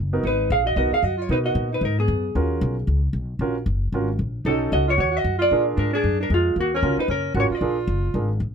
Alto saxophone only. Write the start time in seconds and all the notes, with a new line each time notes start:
0.24 D#4
0.51 G#4
0.65 F#4
0.78 F#4
0.93 G#4
1.04 F#4
1.17 F4
1.31 D#4
1.45 F#4
1.72 D#4
1.82 D#4
1.99 B3
4.45 D#4
4.73 F#4
4.88 F4
4.97 F#4
5.11 F#4
5.38 F4
5.76 D4
5.93 D4
6.20 D4
6.31 G#3
6.58 A#3
6.74 C#4
6.99 D#4
7.09 C#4
7.35 F#4
7.52 F4